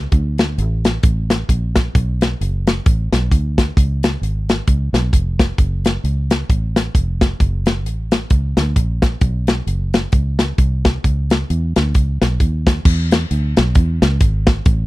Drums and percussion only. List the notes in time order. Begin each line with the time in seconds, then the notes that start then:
0.12 kick, closed hi-hat
0.38 snare, closed hi-hat
0.59 closed hi-hat
0.85 snare, closed hi-hat
1.03 kick, closed hi-hat
1.30 snare, closed hi-hat
1.49 kick, closed hi-hat
1.75 kick, snare, closed hi-hat
1.95 kick, closed hi-hat
2.21 snare, closed hi-hat
2.41 closed hi-hat
2.67 snare, closed hi-hat
2.86 kick, closed hi-hat
3.13 snare, closed hi-hat
3.31 kick, closed hi-hat
3.58 kick, snare, closed hi-hat
3.77 kick, closed hi-hat
4.03 snare, closed hi-hat
4.23 closed hi-hat
4.49 snare, closed hi-hat
4.67 kick, closed hi-hat
4.94 snare, closed hi-hat
5.13 kick, closed hi-hat
5.39 kick, snare, closed hi-hat
5.58 kick, closed hi-hat
5.85 snare, closed hi-hat
6.05 closed hi-hat
6.31 snare, closed hi-hat
6.50 kick, closed hi-hat
6.76 snare, closed hi-hat
6.95 kick, closed hi-hat
7.21 kick, snare, closed hi-hat
7.40 kick, closed hi-hat
7.66 snare, closed hi-hat
7.86 closed hi-hat
8.12 snare, closed hi-hat
8.30 kick, closed hi-hat
8.57 snare, closed hi-hat
8.76 kick, closed hi-hat
9.02 kick, snare, closed hi-hat
9.21 kick, closed hi-hat
9.47 snare, closed hi-hat
9.68 closed hi-hat
9.94 snare, closed hi-hat
10.12 kick, closed hi-hat
10.39 snare, closed hi-hat
10.58 kick, closed hi-hat
10.85 kick, snare, closed hi-hat
11.04 kick, closed hi-hat
11.30 snare, closed hi-hat
11.50 closed hi-hat
11.76 snare, closed hi-hat
11.95 kick, closed hi-hat
12.22 snare, closed hi-hat
12.40 kick, closed hi-hat
12.67 kick, snare, closed hi-hat
12.85 kick, crash
13.11 snare, closed hi-hat
13.31 closed hi-hat
13.57 snare, closed hi-hat
13.75 kick, closed hi-hat
14.02 snare, closed hi-hat
14.21 kick, closed hi-hat
14.47 kick, snare, closed hi-hat
14.66 kick, closed hi-hat